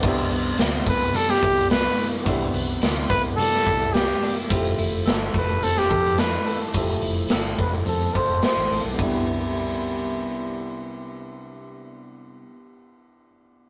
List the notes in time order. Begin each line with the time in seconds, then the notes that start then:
Already playing: G3 E4
0.00 C2 B3 D4 E4, kick, crash
0.04 C3 G4
0.30 C2 B3, closed hi-hat
0.58 D2 E4, snare, closed hi-hat
0.87 C2 B3 B4, kick, closed hi-hat
1.13 C3 G3 A4, closed hi-hat
1.29 G4, snare
1.42 C2 E4, kick, closed hi-hat
1.56 closed hi-hat
1.70 B3 B4, snare, closed hi-hat
1.97 E4, closed hi-hat
2.23 C2 C3 B3 D4 E4, kick, closed hi-hat
2.28 G4
2.54 C2 B3, closed hi-hat
2.82 D2 E4, snare, closed hi-hat
3.10 C2 B3 B4, kick, closed hi-hat
3.37 C3 G3 A4, closed hi-hat
3.53 snare
3.66 C2 E4, kick, closed hi-hat
3.93 B3 G4, snare, closed hi-hat
4.22 D4, closed hi-hat
4.36 E4
4.48 F1 F3 A3 C4 E4, kick, closed hi-hat
4.53 G4
4.78 F1 E4, closed hi-hat
5.06 G1 A4, snare, closed hi-hat
5.34 F1 E4 B4, kick, closed hi-hat
5.63 C4 A4, closed hi-hat
5.77 G4, snare
5.90 F2 A4, kick, closed hi-hat
6.05 closed hi-hat
6.18 E4 B4, snare, closed hi-hat
6.46 A4, closed hi-hat
6.72 F1 F3 A3 C4 E4, kick, closed hi-hat
6.78 G4
6.87 closed hi-hat
7.01 F1 E4, closed hi-hat
7.29 G1 A4, snare, closed hi-hat
7.58 F1 D4 B4, kick, closed hi-hat
7.72 E4
7.86 F2 C4 A4, closed hi-hat
8.14 A4 C5, kick, closed hi-hat
8.28 F1
8.42 E4 C5, snare, closed hi-hat
8.57 A1
8.70 A1 A4, closed hi-hat
8.85 B1
8.93 C3 B3 D4
8.99 C2 G3 E4 E5, kick, ride
9.03 B3 G4
9.10 E4